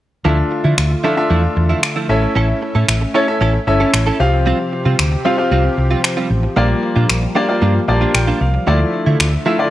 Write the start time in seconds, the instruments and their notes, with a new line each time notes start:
0.25 fingered electric bass D2, supersaw synth D3 A3 F4 E5, clean electric guitar F3 A3 E4, grand piano D4 F4 A4 E5
0.38 muted clean electric guitar stroke
0.51 muted clean electric guitar stroke
0.64 fingered electric bass D3, clean electric guitar F3 A3 E4
0.78 fingered electric bass D2, finger snap
0.91 muted clean electric guitar stroke
1.04 clean electric guitar F3 A3 E4, grand piano D4 F4 A4 E5
1.17 grand piano D4 F4 A4 E5, muted clean electric guitar stroke
1.30 fingered electric bass E2, clean electric guitar F3 A3 E4
1.43 muted clean electric guitar stroke
1.56 fingered electric bass E2, muted clean electric guitar stroke
1.69 clean electric guitar F3 A3 E4
1.83 finger snap
1.96 clean electric guitar F3 A3 E4
2.09 fingered electric bass A1, grand piano C#4 E4 A4 E5, supersaw synth C#4, muted clean electric guitar stroke
2.22 muted clean electric guitar stroke
2.35 fingered electric bass A1, clean electric guitar C#4 E4 A4
2.49 muted clean electric guitar stroke
2.62 muted clean electric guitar stroke
2.75 fingered electric bass A2, clean electric guitar C#4 E4 A4
2.88 fingered electric bass A1, finger snap
3.01 muted clean electric guitar stroke
3.14 clean electric guitar C#4 E4 A4, grand piano C#4 E4 A4 C#5
3.28 grand piano C#4 E4 A4 E5, muted clean electric guitar stroke
3.41 fingered electric bass A1, clean electric guitar C#4 E4 A4
3.54 muted clean electric guitar stroke
3.67 fingered electric bass G1, grand piano C#4 E4 A4 E5, muted clean electric guitar stroke
3.80 clean electric guitar C#4 E4 A4
3.93 fingered electric bass A1, finger snap, muted clean electric guitar stroke
4.06 clean electric guitar C#4 E4 A4
4.20 fingered electric bass C2, supersaw synth C3 F3 C4 G4, grand piano C4 F4 G4 F5
4.33 muted clean electric guitar stroke
4.46 clean electric guitar G3 C4 F4
4.59 muted clean electric guitar stroke
4.72 muted clean electric guitar stroke
4.85 fingered electric bass C3, clean electric guitar G3 C4 F4
4.99 fingered electric bass D2, finger snap
5.12 muted clean electric guitar stroke
5.25 clean electric guitar G3 C4 F4, grand piano C4 F4 G4 F5
5.38 grand piano C4 F4 G4 F5, muted clean electric guitar stroke
5.51 fingered electric bass C2, clean electric guitar G3 C4 F4
5.64 muted clean electric guitar stroke
5.78 fingered electric bass C2, muted clean electric guitar stroke
5.91 clean electric guitar G3 C4 F4
6.04 finger snap
6.17 clean electric guitar G3 C4 F4
6.30 fingered electric bass A1, muted clean electric guitar stroke
6.43 muted clean electric guitar stroke
6.56 fingered electric bass A#1, supersaw synth G3 A#3, clean electric guitar A#3 D4 F4, grand piano A#3 F4 G4 D5
6.70 muted clean electric guitar stroke
6.83 muted clean electric guitar stroke
6.96 fingered electric bass A#2, clean electric guitar A#3 D4 F4
7.09 fingered electric bass A#1, finger snap
7.22 muted clean electric guitar stroke
7.35 clean electric guitar A#3 D4 F4, grand piano A#3 F4 G4 D5
7.48 grand piano A#3 F4 G4 D5, muted clean electric guitar stroke
7.62 fingered electric bass G2, clean electric guitar A#3 D4 F4
7.75 muted clean electric guitar stroke
7.88 fingered electric bass A#1, grand piano A#3 F4 G4 D5 A5, muted clean electric guitar stroke
8.01 clean electric guitar A#3 D4 F4
8.15 fingered electric bass A#1, grand piano G5, finger snap
8.27 clean electric guitar A#3 D4 F4
8.41 fingered electric bass C2, grand piano F5, muted clean electric guitar stroke
8.54 muted clean electric guitar stroke
8.67 fingered electric bass D2, supersaw synth D3 A3 E5, clean electric guitar F3 A3 E4, grand piano A3 E4 F4 D5
8.80 muted clean electric guitar stroke
8.93 muted clean electric guitar stroke
9.06 fingered electric bass D3, clean electric guitar F3 A3 E4
9.20 fingered electric bass D2, finger snap
9.33 muted clean electric guitar stroke
9.46 clean electric guitar F3 A3 E4, grand piano A3 E4 F4 E5
9.59 grand piano A3 E4 F4 D5, muted clean electric guitar stroke